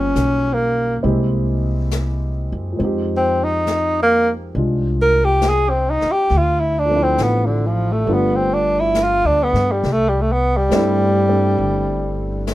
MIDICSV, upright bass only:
0, 0, Header, 1, 3, 480
1, 0, Start_track
1, 0, Tempo, 879765
1, 1523, Time_signature, 4, 2, 24, 8
1, 6842, End_track
2, 0, Start_track
2, 0, Title_t, "Upright bass"
2, 0, Program_c, 0, 32
2, 0, Note_on_c, 0, 31, 71
2, 62, Note_off_c, 0, 31, 0
2, 86, Note_on_c, 0, 35, 70
2, 543, Note_off_c, 0, 35, 0
2, 567, Note_on_c, 0, 36, 71
2, 1354, Note_off_c, 0, 36, 0
2, 1377, Note_on_c, 0, 42, 69
2, 1514, Note_off_c, 0, 42, 0
2, 1526, Note_on_c, 0, 41, 78
2, 2461, Note_off_c, 0, 41, 0
2, 2482, Note_on_c, 0, 36, 74
2, 3269, Note_off_c, 0, 36, 0
2, 3440, Note_on_c, 0, 38, 80
2, 3898, Note_off_c, 0, 38, 0
2, 3919, Note_on_c, 0, 33, 68
2, 4378, Note_off_c, 0, 33, 0
2, 4403, Note_on_c, 0, 31, 75
2, 5022, Note_off_c, 0, 31, 0
2, 5042, Note_on_c, 0, 38, 55
2, 5192, Note_off_c, 0, 38, 0
2, 5201, Note_on_c, 0, 43, 70
2, 5351, Note_off_c, 0, 43, 0
2, 5368, Note_on_c, 0, 36, 74
2, 5823, Note_off_c, 0, 36, 0
2, 5840, Note_on_c, 0, 43, 70
2, 6299, Note_off_c, 0, 43, 0
2, 6319, Note_on_c, 0, 31, 74
2, 6842, Note_off_c, 0, 31, 0
2, 6842, End_track
3, 0, Start_track
3, 0, Title_t, "Muted upright bass strokes"
3, 3291, Note_on_c, 9, 29, 37
3, 3346, Note_off_c, 9, 29, 0
3, 6842, End_track
0, 0, End_of_file